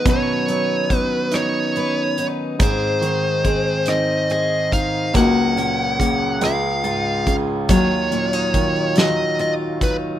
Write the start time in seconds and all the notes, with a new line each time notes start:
Already playing: B3 D#4
0.05 B2 D#3 F#3 C#4 B4, kick, closed hi-hat
0.10 C#5
0.48 F#3 D#4, closed hi-hat
0.90 B3 C#4, kick, closed hi-hat
0.98 B4
1.32 D#4 C#5, cross-stick, closed hi-hat
1.76 B4, closed hi-hat
2.18 D#4, closed hi-hat
2.59 G#2 D#3 C4 G#4 C5, kick, closed hi-hat
3.01 D#3 D#4, closed hi-hat
3.45 G#3 C4, kick, closed hi-hat
3.86 C4 D#4 D#5, cross-stick, closed hi-hat
4.30 G#4 D#5, closed hi-hat
4.72 D#4 F5, kick, closed hi-hat
5.14 C#2 C#3 F#3 A#3 F#4 F#5, kick, closed hi-hat
5.56 A#2 C#4, closed hi-hat
5.99 C#3 A#3, kick, closed hi-hat
6.41 C#2 G#3 F4 F5, cross-stick, closed hi-hat
6.45 C#3
6.84 G#2 F4, closed hi-hat
7.26 C#3 C#4, kick, closed hi-hat
7.69 D#2 F#3 D#4 F4 C#5, kick, closed hi-hat
8.11 A#2 C#4, closed hi-hat
8.33 D#4
8.54 D#3, kick, closed hi-hat
8.96 F#3 D#4 D#5, snare, closed hi-hat
9.39 F4 D#5, closed hi-hat
9.81 D#4 B4, kick, closed hi-hat